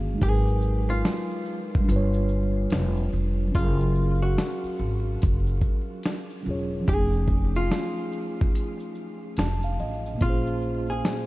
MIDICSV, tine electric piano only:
0, 0, Header, 1, 2, 480
1, 0, Start_track
1, 0, Tempo, 833333
1, 123, Time_signature, 4, 2, 24, 8
1, 6488, End_track
2, 0, Start_track
2, 0, Title_t, "Tine electric piano"
2, 0, Program_c, 0, 4
2, 0, Control_c, 0, 64, 127
2, 0, Note_on_c, 0, 51, 58
2, 0, Note_on_c, 0, 58, 56
2, 0, Note_on_c, 0, 61, 52
2, 0, Note_on_c, 0, 66, 53
2, 0, Note_on_c, 0, 68, 64
2, 0, Note_on_c, 0, 77, 51
2, 80, Note_on_c, 0, 56, 67
2, 103, Note_on_c, 0, 63, 60
2, 113, Note_off_c, 0, 51, 0
2, 118, Note_off_c, 0, 58, 0
2, 122, Note_off_c, 0, 61, 0
2, 125, Note_on_c, 0, 54, 58
2, 127, Note_off_c, 0, 77, 0
2, 129, Control_c, 0, 64, 0
2, 131, Note_off_c, 0, 66, 0
2, 136, Note_off_c, 0, 68, 0
2, 149, Note_on_c, 0, 70, 58
2, 171, Note_on_c, 0, 71, 67
2, 232, Control_c, 0, 64, 127
2, 1039, Note_on_c, 0, 55, 78
2, 1042, Note_off_c, 0, 56, 0
2, 1054, Note_off_c, 0, 63, 0
2, 1061, Note_on_c, 0, 62, 71
2, 1065, Note_off_c, 0, 54, 0
2, 1077, Note_off_c, 0, 70, 0
2, 1084, Note_on_c, 0, 65, 73
2, 1088, Note_off_c, 0, 71, 0
2, 1089, Control_c, 0, 64, 0
2, 1106, Note_on_c, 0, 71, 73
2, 1129, Note_on_c, 0, 73, 84
2, 1189, Control_c, 0, 64, 127
2, 2001, Note_off_c, 0, 55, 0
2, 2002, Note_on_c, 0, 54, 60
2, 2012, Note_off_c, 0, 62, 0
2, 2024, Note_off_c, 0, 65, 0
2, 2024, Note_on_c, 0, 61, 61
2, 2035, Note_off_c, 0, 71, 0
2, 2047, Note_off_c, 0, 73, 0
2, 2047, Note_on_c, 0, 77, 59
2, 2051, Control_c, 0, 64, 0
2, 2069, Note_on_c, 0, 68, 62
2, 2092, Note_on_c, 0, 70, 71
2, 2156, Control_c, 0, 64, 127
2, 3679, Note_off_c, 0, 54, 0
2, 3690, Note_off_c, 0, 61, 0
2, 3702, Note_off_c, 0, 77, 0
2, 3703, Note_on_c, 0, 54, 58
2, 3713, Note_off_c, 0, 68, 0
2, 3715, Note_on_c, 0, 61, 56
2, 3724, Note_off_c, 0, 70, 0
2, 3727, Note_on_c, 0, 65, 53
2, 3739, Note_on_c, 0, 68, 52
2, 3748, Note_on_c, 0, 73, 63
2, 3922, Note_on_c, 0, 53, 62
2, 3938, Note_off_c, 0, 61, 0
2, 3945, Note_on_c, 0, 61, 58
2, 3953, Note_off_c, 0, 54, 0
2, 3965, Note_off_c, 0, 65, 0
2, 3968, Note_on_c, 0, 63, 55
2, 3970, Control_c, 0, 64, 0
2, 3971, Note_off_c, 0, 68, 0
2, 3976, Note_off_c, 0, 73, 0
2, 3991, Note_on_c, 0, 68, 60
2, 4013, Note_on_c, 0, 57, 73
2, 4062, Control_c, 0, 64, 127
2, 5405, Note_on_c, 0, 81, 70
2, 5542, Note_off_c, 0, 81, 0
2, 5554, Note_on_c, 0, 77, 62
2, 5638, Note_off_c, 0, 77, 0
2, 5645, Note_on_c, 0, 75, 68
2, 5839, Note_off_c, 0, 53, 0
2, 5841, Note_on_c, 0, 46, 62
2, 5851, Note_off_c, 0, 61, 0
2, 5862, Note_off_c, 0, 63, 0
2, 5862, Note_on_c, 0, 58, 62
2, 5867, Note_off_c, 0, 75, 0
2, 5874, Note_off_c, 0, 68, 0
2, 5885, Note_off_c, 0, 57, 0
2, 5886, Note_on_c, 0, 60, 45
2, 5891, Control_c, 0, 64, 0
2, 5908, Note_on_c, 0, 68, 62
2, 5924, Note_on_c, 0, 61, 59
2, 5930, Note_off_c, 0, 60, 0
2, 5930, Note_on_c, 0, 72, 70
2, 6000, Control_c, 0, 64, 127
2, 6488, Note_off_c, 0, 46, 0
2, 6488, Note_off_c, 0, 58, 0
2, 6488, Note_off_c, 0, 61, 0
2, 6488, Note_off_c, 0, 68, 0
2, 6488, Note_off_c, 0, 72, 0
2, 6488, End_track
0, 0, End_of_file